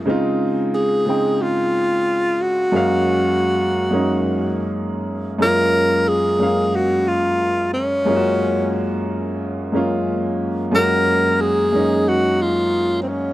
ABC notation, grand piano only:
X:1
M:4/4
L:1/16
Q:"Swing 16ths" 1/4=90
K:Gblyd
V:1 name="Grand piano"
[D,A,CEF]4- [D,A,CEF] z [D,A,CE=g]6- [D,A,CEg] z3 | [G,,A,B,Df]6 z [G,,A,B,DE]6- [G,,A,B,DE] z2 | [K:F#] [F,,G,A,CE]4- [F,,G,A,CE] z [F,,G,A,Ce]6- [F,,G,A,Ce] z3 | [F,,G,A,CEF]6- [F,,G,A,CEF] z3 [F,,G,A,CE]4- [F,,G,A,CE] z |
[F,,G,A,CF]4- [F,,G,A,CF] z [F,,G,A,CD]6- [F,,G,A,CD] z3 |]